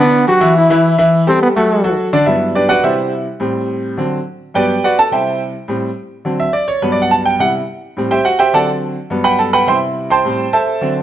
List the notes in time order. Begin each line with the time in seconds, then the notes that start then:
0.00 D3 B3 D4 D5
0.27 F#3 F#4 G4
0.41 E3 E4 E5
0.58 E4
0.70 E3 E4 E5
0.98 E3 E4 E5
1.27 G3 C4 G4 A4
1.42 B3
1.56 F#3 A3 F#4 A4
1.84 F#3 F#4 A4
2.13 D3 D4 D5
2.26 G2 F#3 B3 E4 E5
2.55 D4 G4 B4 D5
2.69 F#4 B4 D5 F#5
2.83 C3 G3 E4 G4 C5 E5
3.40 A2 G3 C4
3.97 D3 F#3 C4
4.54 G2 F#3 B3 G4 B4 D5 G5
4.84 F#4 B4 D5 F#5
4.99 A4 A5
5.11 C3 G3 E4 G4 C5 E5 G5
5.68 A2 G3 C4
6.25 D3 F#3 C4
6.40 E5
6.53 D5
6.68 C#5
6.82 G2 F#3 B3 B4
6.92 D5
7.02 F#5
7.11 A5
7.25 G5
7.39 C3 G3 E4 F#5
7.97 A2 G3 C4
8.11 G4 C5 E5 G5
8.25 F#4 F#5
8.39 G4 C5 E5 G5
8.53 D3 F#3 C4 A4 D5 F#5 A5
9.10 G2 F#3 B3
9.24 B4 F#5 G5 B5
9.39 A4 A5
9.53 B4 F#5 G5 B5
9.67 C3 G3 E4 C5 E5 G5 C6
10.10 C5 G5 A5 C6
10.25 A2 G3 C4
10.53 A4 C5 E5 A5
10.81 D3 F#3 C4